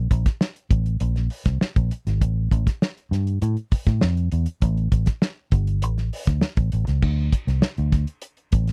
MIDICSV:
0, 0, Header, 1, 4, 480
1, 0, Start_track
1, 0, Tempo, 601805
1, 1768, Time_signature, 4, 2, 24, 8
1, 6958, End_track
2, 0, Start_track
2, 0, Title_t, "Fingered electric bass"
2, 0, Program_c, 0, 33
2, 88, Note_on_c, 0, 34, 93
2, 191, Note_off_c, 0, 34, 0
2, 565, Note_on_c, 0, 33, 88
2, 773, Note_off_c, 0, 33, 0
2, 804, Note_on_c, 0, 34, 94
2, 1013, Note_off_c, 0, 34, 0
2, 1163, Note_on_c, 0, 36, 88
2, 1269, Note_off_c, 0, 36, 0
2, 1408, Note_on_c, 0, 34, 84
2, 1511, Note_off_c, 0, 34, 0
2, 1649, Note_on_c, 0, 32, 85
2, 1752, Note_off_c, 0, 32, 0
2, 1765, Note_on_c, 0, 33, 100
2, 1973, Note_off_c, 0, 33, 0
2, 2007, Note_on_c, 0, 33, 98
2, 2111, Note_off_c, 0, 33, 0
2, 2483, Note_on_c, 0, 43, 86
2, 2692, Note_off_c, 0, 43, 0
2, 2729, Note_on_c, 0, 45, 107
2, 2832, Note_off_c, 0, 45, 0
2, 3087, Note_on_c, 0, 45, 92
2, 3191, Note_off_c, 0, 45, 0
2, 3214, Note_on_c, 0, 41, 90
2, 3418, Note_off_c, 0, 41, 0
2, 3449, Note_on_c, 0, 40, 77
2, 3552, Note_off_c, 0, 40, 0
2, 3685, Note_on_c, 0, 33, 112
2, 3893, Note_off_c, 0, 33, 0
2, 3925, Note_on_c, 0, 33, 86
2, 4029, Note_off_c, 0, 33, 0
2, 4403, Note_on_c, 0, 31, 100
2, 4652, Note_off_c, 0, 31, 0
2, 4652, Note_on_c, 0, 33, 100
2, 4857, Note_off_c, 0, 33, 0
2, 5005, Note_on_c, 0, 38, 82
2, 5109, Note_off_c, 0, 38, 0
2, 5241, Note_on_c, 0, 33, 79
2, 5347, Note_off_c, 0, 33, 0
2, 5370, Note_on_c, 0, 33, 89
2, 5472, Note_off_c, 0, 33, 0
2, 5486, Note_on_c, 0, 37, 86
2, 5590, Note_off_c, 0, 37, 0
2, 5605, Note_on_c, 0, 38, 110
2, 5812, Note_off_c, 0, 38, 0
2, 5961, Note_on_c, 0, 36, 93
2, 6066, Note_off_c, 0, 36, 0
2, 6207, Note_on_c, 0, 38, 92
2, 6413, Note_off_c, 0, 38, 0
2, 6805, Note_on_c, 0, 33, 98
2, 6958, Note_off_c, 0, 33, 0
2, 6958, End_track
3, 0, Start_track
3, 0, Title_t, "Muted fingered electric bass strokes"
3, 2970, Note_on_c, 9, 29, 44
3, 3050, Note_off_c, 9, 29, 0
3, 6958, End_track
4, 0, Start_track
4, 0, Title_t, "Drums"
4, 86, Note_on_c, 9, 36, 86
4, 88, Note_on_c, 9, 42, 78
4, 166, Note_off_c, 9, 36, 0
4, 168, Note_off_c, 9, 42, 0
4, 205, Note_on_c, 9, 38, 44
4, 205, Note_on_c, 9, 42, 52
4, 207, Note_on_c, 9, 36, 112
4, 285, Note_off_c, 9, 38, 0
4, 285, Note_off_c, 9, 42, 0
4, 287, Note_off_c, 9, 36, 0
4, 326, Note_on_c, 9, 38, 96
4, 405, Note_off_c, 9, 38, 0
4, 447, Note_on_c, 9, 42, 36
4, 527, Note_off_c, 9, 42, 0
4, 563, Note_on_c, 9, 36, 108
4, 565, Note_on_c, 9, 42, 79
4, 642, Note_off_c, 9, 36, 0
4, 645, Note_off_c, 9, 42, 0
4, 685, Note_on_c, 9, 42, 45
4, 765, Note_off_c, 9, 42, 0
4, 799, Note_on_c, 9, 42, 99
4, 879, Note_off_c, 9, 42, 0
4, 925, Note_on_c, 9, 38, 36
4, 925, Note_on_c, 9, 42, 36
4, 1004, Note_off_c, 9, 38, 0
4, 1005, Note_off_c, 9, 42, 0
4, 1038, Note_on_c, 9, 46, 92
4, 1118, Note_off_c, 9, 46, 0
4, 1160, Note_on_c, 9, 42, 56
4, 1162, Note_on_c, 9, 38, 37
4, 1163, Note_on_c, 9, 36, 101
4, 1240, Note_off_c, 9, 42, 0
4, 1242, Note_off_c, 9, 36, 0
4, 1242, Note_off_c, 9, 38, 0
4, 1286, Note_on_c, 9, 38, 97
4, 1366, Note_off_c, 9, 38, 0
4, 1406, Note_on_c, 9, 36, 111
4, 1406, Note_on_c, 9, 42, 38
4, 1485, Note_off_c, 9, 36, 0
4, 1486, Note_off_c, 9, 42, 0
4, 1525, Note_on_c, 9, 42, 91
4, 1605, Note_off_c, 9, 42, 0
4, 1650, Note_on_c, 9, 42, 61
4, 1652, Note_on_c, 9, 38, 40
4, 1730, Note_off_c, 9, 42, 0
4, 1732, Note_off_c, 9, 38, 0
4, 1766, Note_on_c, 9, 36, 93
4, 1767, Note_on_c, 9, 42, 89
4, 1846, Note_off_c, 9, 36, 0
4, 1846, Note_off_c, 9, 42, 0
4, 2005, Note_on_c, 9, 36, 84
4, 2012, Note_on_c, 9, 42, 76
4, 2085, Note_off_c, 9, 36, 0
4, 2092, Note_off_c, 9, 42, 0
4, 2128, Note_on_c, 9, 36, 105
4, 2131, Note_on_c, 9, 38, 40
4, 2132, Note_on_c, 9, 42, 56
4, 2208, Note_off_c, 9, 36, 0
4, 2211, Note_off_c, 9, 38, 0
4, 2212, Note_off_c, 9, 42, 0
4, 2251, Note_on_c, 9, 38, 106
4, 2330, Note_off_c, 9, 38, 0
4, 2373, Note_on_c, 9, 42, 33
4, 2453, Note_off_c, 9, 42, 0
4, 2496, Note_on_c, 9, 38, 36
4, 2497, Note_on_c, 9, 42, 85
4, 2576, Note_off_c, 9, 38, 0
4, 2577, Note_off_c, 9, 42, 0
4, 2608, Note_on_c, 9, 42, 47
4, 2688, Note_off_c, 9, 42, 0
4, 2726, Note_on_c, 9, 42, 98
4, 2805, Note_off_c, 9, 42, 0
4, 2846, Note_on_c, 9, 42, 34
4, 2926, Note_off_c, 9, 42, 0
4, 2963, Note_on_c, 9, 46, 91
4, 2967, Note_on_c, 9, 36, 87
4, 3043, Note_off_c, 9, 46, 0
4, 3046, Note_off_c, 9, 36, 0
4, 3082, Note_on_c, 9, 42, 54
4, 3084, Note_on_c, 9, 36, 105
4, 3084, Note_on_c, 9, 38, 37
4, 3162, Note_off_c, 9, 42, 0
4, 3164, Note_off_c, 9, 36, 0
4, 3164, Note_off_c, 9, 38, 0
4, 3201, Note_on_c, 9, 38, 108
4, 3281, Note_off_c, 9, 38, 0
4, 3326, Note_on_c, 9, 42, 38
4, 3405, Note_off_c, 9, 42, 0
4, 3442, Note_on_c, 9, 42, 89
4, 3522, Note_off_c, 9, 42, 0
4, 3557, Note_on_c, 9, 42, 59
4, 3636, Note_off_c, 9, 42, 0
4, 3681, Note_on_c, 9, 42, 81
4, 3686, Note_on_c, 9, 36, 101
4, 3761, Note_off_c, 9, 42, 0
4, 3765, Note_off_c, 9, 36, 0
4, 3807, Note_on_c, 9, 42, 34
4, 3887, Note_off_c, 9, 42, 0
4, 3922, Note_on_c, 9, 42, 74
4, 3923, Note_on_c, 9, 36, 86
4, 4002, Note_off_c, 9, 42, 0
4, 4003, Note_off_c, 9, 36, 0
4, 4036, Note_on_c, 9, 38, 40
4, 4036, Note_on_c, 9, 42, 56
4, 4045, Note_on_c, 9, 36, 103
4, 4115, Note_off_c, 9, 38, 0
4, 4116, Note_off_c, 9, 42, 0
4, 4125, Note_off_c, 9, 36, 0
4, 4162, Note_on_c, 9, 38, 104
4, 4242, Note_off_c, 9, 38, 0
4, 4398, Note_on_c, 9, 42, 77
4, 4402, Note_on_c, 9, 36, 94
4, 4478, Note_off_c, 9, 42, 0
4, 4482, Note_off_c, 9, 36, 0
4, 4524, Note_on_c, 9, 42, 49
4, 4604, Note_off_c, 9, 42, 0
4, 4643, Note_on_c, 9, 42, 105
4, 4722, Note_off_c, 9, 42, 0
4, 4768, Note_on_c, 9, 38, 38
4, 4768, Note_on_c, 9, 42, 34
4, 4847, Note_off_c, 9, 38, 0
4, 4848, Note_off_c, 9, 42, 0
4, 4888, Note_on_c, 9, 46, 103
4, 4968, Note_off_c, 9, 46, 0
4, 5002, Note_on_c, 9, 42, 54
4, 5004, Note_on_c, 9, 36, 91
4, 5004, Note_on_c, 9, 38, 37
4, 5082, Note_off_c, 9, 42, 0
4, 5084, Note_off_c, 9, 36, 0
4, 5084, Note_off_c, 9, 38, 0
4, 5116, Note_on_c, 9, 38, 105
4, 5196, Note_off_c, 9, 38, 0
4, 5237, Note_on_c, 9, 42, 42
4, 5242, Note_on_c, 9, 36, 113
4, 5317, Note_off_c, 9, 42, 0
4, 5322, Note_off_c, 9, 36, 0
4, 5360, Note_on_c, 9, 42, 86
4, 5439, Note_off_c, 9, 42, 0
4, 5481, Note_on_c, 9, 42, 59
4, 5483, Note_on_c, 9, 38, 41
4, 5560, Note_off_c, 9, 42, 0
4, 5563, Note_off_c, 9, 38, 0
4, 5600, Note_on_c, 9, 49, 83
4, 5603, Note_on_c, 9, 36, 97
4, 5680, Note_off_c, 9, 49, 0
4, 5683, Note_off_c, 9, 36, 0
4, 5842, Note_on_c, 9, 36, 89
4, 5844, Note_on_c, 9, 42, 79
4, 5922, Note_off_c, 9, 36, 0
4, 5924, Note_off_c, 9, 42, 0
4, 5967, Note_on_c, 9, 38, 43
4, 5967, Note_on_c, 9, 42, 59
4, 6046, Note_off_c, 9, 38, 0
4, 6047, Note_off_c, 9, 42, 0
4, 6078, Note_on_c, 9, 38, 102
4, 6158, Note_off_c, 9, 38, 0
4, 6201, Note_on_c, 9, 42, 36
4, 6281, Note_off_c, 9, 42, 0
4, 6320, Note_on_c, 9, 36, 90
4, 6320, Note_on_c, 9, 38, 37
4, 6321, Note_on_c, 9, 42, 77
4, 6399, Note_off_c, 9, 36, 0
4, 6399, Note_off_c, 9, 38, 0
4, 6400, Note_off_c, 9, 42, 0
4, 6439, Note_on_c, 9, 42, 50
4, 6519, Note_off_c, 9, 42, 0
4, 6553, Note_on_c, 9, 42, 109
4, 6633, Note_off_c, 9, 42, 0
4, 6675, Note_on_c, 9, 42, 33
4, 6755, Note_off_c, 9, 42, 0
4, 6795, Note_on_c, 9, 42, 92
4, 6801, Note_on_c, 9, 36, 98
4, 6875, Note_off_c, 9, 42, 0
4, 6881, Note_off_c, 9, 36, 0
4, 6919, Note_on_c, 9, 42, 52
4, 6921, Note_on_c, 9, 38, 37
4, 6958, Note_off_c, 9, 38, 0
4, 6958, Note_off_c, 9, 42, 0
4, 6958, End_track
0, 0, End_of_file